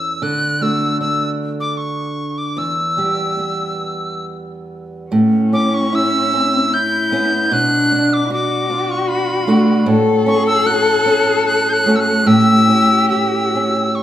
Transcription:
Already playing: E2 A3 C#4 E4 E6
0.22 D3 F#6
0.61 A3 D4 F#4 E6
1.00 D4 E6
1.60 D6
1.77 C#6
2.38 D6
2.57 E2 E6
2.97 G3 B3 G4
3.39 B3
5.11 A2 C#4
5.53 C#4 D6
5.74 C#6
5.93 E4 E6
6.34 C#4
6.71 E4 G6
7.12 B3 C#4 E4
7.51 B2 D4 F#6
7.92 D4
8.13 D6
8.30 F#4 D6
8.70 D4
8.91 C#6
9.02 C#6
9.08 B5
9.47 A3 D4 F#4
9.86 A2 A4
10.26 C#4 C#6
10.47 E6
10.66 F#4 F#6
11.06 C#4
11.46 F#6
11.69 F#6 G6
11.86 A3 C#4 F#4
11.96 E6
12.00 F#6
12.26 A2 G4 E6
12.68 C#4
13.09 G4 E6
13.55 C#4
13.95 C#6

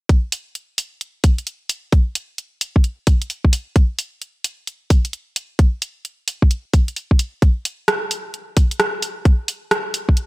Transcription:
0.09 kick, closed hi-hat
0.32 open hi-hat
0.55 closed hi-hat
0.78 open hi-hat
1.01 closed hi-hat
1.24 kick, open hi-hat
1.38 closed hi-hat
1.47 closed hi-hat
1.69 open hi-hat
1.92 kick, closed hi-hat
2.15 open hi-hat
2.38 closed hi-hat
2.61 open hi-hat
2.76 kick
2.84 closed hi-hat
3.07 kick, open hi-hat
3.22 closed hi-hat
3.30 open hi-hat
3.45 kick
3.53 open hi-hat
3.76 kick, closed hi-hat
3.99 open hi-hat
4.21 closed hi-hat
4.44 open hi-hat
4.67 closed hi-hat
4.90 kick, open hi-hat
5.05 closed hi-hat
5.13 closed hi-hat
5.36 open hi-hat
5.59 kick, closed hi-hat
5.82 open hi-hat
6.05 closed hi-hat
6.28 open hi-hat
6.42 kick
6.51 closed hi-hat
6.73 kick, open hi-hat
6.88 closed hi-hat
6.96 open hi-hat
7.11 kick
7.19 open hi-hat
7.42 kick, closed hi-hat
7.65 open hi-hat
7.88 cross-stick, closed hi-hat
8.11 open hi-hat
8.34 closed hi-hat
8.57 kick, open hi-hat
8.71 closed hi-hat
8.80 cross-stick, closed hi-hat
9.02 open hi-hat
9.25 kick, closed hi-hat
9.48 open hi-hat
9.71 cross-stick, closed hi-hat
9.94 open hi-hat
10.09 kick
10.17 closed hi-hat

